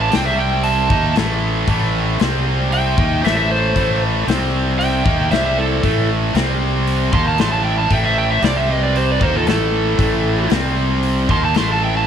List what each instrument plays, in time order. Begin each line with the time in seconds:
Already playing: distorted electric guitar E3 A3
0.00 lead electric guitar F5, electric slide guitar A5
0.10 distorted electric guitar C3 G3 C4, lead electric guitar C5, snare, open hi-hat
0.15 fingered electric bass C2, electric slide guitar G5
0.25 lead electric guitar C5, electric slide guitar E5
0.38 lead electric guitar E5, electric slide guitar G5
0.63 lead electric guitar E5, electric slide guitar A5, open hi-hat
0.90 fingered electric bass D#2, distorted electric guitar D#3 A#3 D#4, kick
1.16 fingered electric bass A1, distorted electric guitar A2 E3 A3, snare, open hi-hat
1.68 fingered electric bass A1, distorted electric guitar A2 E3 A3, kick, open hi-hat
2.20 fingered electric bass C2, distorted electric guitar C3 G3 C4, snare, open hi-hat
2.71 lead electric guitar E5, electric slide guitar G5, open hi-hat
2.98 fingered electric bass D#2, distorted electric guitar D#3 A#3 D#4, kick
3.23 fingered electric bass A1, distorted electric guitar A2 E3 A3, lead electric guitar C5, electric slide guitar E5, snare, open hi-hat
3.36 lead electric guitar C5, electric slide guitar E5
3.51 lead electric guitar A4, electric slide guitar C5
3.75 fingered electric bass A1, distorted electric guitar A2 E3 A3, kick, open hi-hat
4.27 fingered electric bass C2, distorted electric guitar C3 G3 C4, snare, open hi-hat
4.79 lead electric guitar E5, electric slide guitar G5, open hi-hat
5.05 fingered electric bass D#2, distorted electric guitar D#3 A#3 D#4, kick
5.31 fingered electric bass C2, distorted electric guitar C3 G3 C4, lead electric guitar C5, electric slide guitar E5, snare, open hi-hat
5.46 lead electric guitar C5, electric slide guitar E5
5.58 lead electric guitar E4, electric slide guitar A4
5.83 fingered electric bass A1, distorted electric guitar A2 E3 A3, kick, open hi-hat
6.34 fingered electric bass C2, distorted electric guitar C3 G3 C4, snare, open hi-hat
6.87 open hi-hat
7.12 fingered electric bass D#2, distorted electric guitar D#3 A#3 D#4, lead electric guitar A5, electric slide guitar C6, kick
7.26 lead electric guitar F5, electric slide guitar A5
7.38 fingered electric bass A1, distorted electric guitar A2 E3 A3, lead electric guitar A5, electric slide guitar C6, snare, open hi-hat
7.52 lead electric guitar F5, electric slide guitar A5
7.64 electric slide guitar G5
7.69 lead electric guitar E5
7.78 lead electric guitar F5, electric slide guitar A5
7.90 fingered electric bass A1, distorted electric guitar A2 E3 A3, electric slide guitar G5, kick, open hi-hat
7.94 lead electric guitar E5
8.04 lead electric guitar C5, electric slide guitar E5
8.18 lead electric guitar E5, electric slide guitar G5
8.31 lead electric guitar C5, electric slide guitar E5
8.42 fingered electric bass C2, distorted electric guitar C3 G3 C4, lead electric guitar G4, electric slide guitar D5, snare, open hi-hat
8.57 lead electric guitar C5, electric slide guitar E5
8.71 lead electric guitar B4, electric slide guitar D#5
8.83 lead electric guitar B4, electric slide guitar D5
8.96 lead electric guitar G4, electric slide guitar C5, open hi-hat
9.11 lead electric guitar B4, electric slide guitar D5
9.20 fingered electric bass D#2, distorted electric guitar D#3 A#3 D#4, electric slide guitar C5, kick
9.26 lead electric guitar A4
9.35 lead electric guitar F4, electric slide guitar A4
9.46 fingered electric bass A1, distorted electric guitar A2 E3 A3, electric slide guitar A4, snare, open hi-hat
9.51 lead electric guitar E4
9.98 fingered electric bass A1, distorted electric guitar A2 E3 A3, kick, open hi-hat
10.50 fingered electric bass C2, distorted electric guitar C3 G3 C4, snare, open hi-hat
11.03 open hi-hat
11.29 fingered electric bass D#2, distorted electric guitar D#3 A#3 D#4, lead electric guitar A5, electric slide guitar C6, kick
11.44 lead electric guitar F5, electric slide guitar A5
11.55 fingered electric bass A1, distorted electric guitar A2 E3 A3, lead electric guitar A5, electric slide guitar C6, snare, open hi-hat
11.71 lead electric guitar F5, electric slide guitar A5
11.83 lead electric guitar E5, electric slide guitar G5
11.96 lead electric guitar F5, electric slide guitar A5